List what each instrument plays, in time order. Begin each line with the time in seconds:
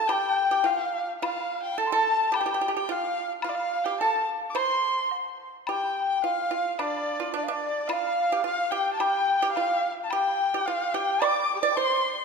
Already playing: dizi A5
0.08 pipa G4, erhu G5, dizi G5, high woodblock
0.51 pipa G4, erhu G5
0.64 pipa F4, erhu F5, low woodblock
0.70 dizi F5
1.21 pipa F4, erhu F5, dizi F5, high woodblock
1.63 erhu G5
1.77 pipa A4, erhu A5
1.82 dizi A5
1.86 dizi C6
1.92 pipa A4, erhu A5, dizi A5
2.27 dizi A5
2.32 pipa G4, erhu G5, high woodblock
2.39 pipa G4, dizi G5
2.46 pipa G4
2.54 pipa G4
2.61 pipa G4
2.68 pipa G4
2.76 pipa G4, erhu G5
2.89 pipa F4, erhu F5
2.95 dizi F5
3.42 pipa F4, erhu F5, high woodblock
3.47 erhu D5, dizi F5
3.55 erhu F5
3.84 pipa G4, erhu G5
4.00 pipa A4, erhu A5, dizi A5
4.50 erhu D6
4.55 pipa C5, dizi C6, erhu C6, high woodblock
5.11 low woodblock
5.67 pipa G4, dizi G5, erhu G5, high woodblock
6.09 erhu G5
6.24 pipa F4, dizi F5, erhu F5
6.51 pipa F4, dizi F5
6.73 dizi F5
6.79 pipa D4, dizi D5, erhu D5, high woodblock
7.20 pipa F4
7.34 pipa D4, erhu D5, dizi D5
7.43 dizi F5
7.48 pipa D4, erhu D5, dizi D5
7.88 pipa F4, erhu F5, high woodblock
7.92 dizi F5
8.32 pipa G4
8.43 pipa F4, erhu F5, dizi F5
8.71 pipa G4, erhu G5, dizi G5
8.93 dizi A5, erhu A5
8.97 pipa G4, erhu G5, dizi G5, high woodblock
9.38 erhu G5
9.42 pipa G4
9.52 erhu F5, dizi F5
9.56 pipa F4, high woodblock
10.04 erhu A5
10.10 pipa G4, erhu G5, dizi G5, high woodblock
10.54 pipa G4
10.66 pipa F4, erhu F5, dizi F5
10.94 pipa G4, erhu G5, dizi G5
11.22 pipa D5, dizi D6, erhu D6, high woodblock
11.55 dizi G4
11.61 dizi A4 C5 D5, pipa D5, erhu D6
11.70 dizi G5
11.75 pipa C5, dizi A5 C6, erhu C6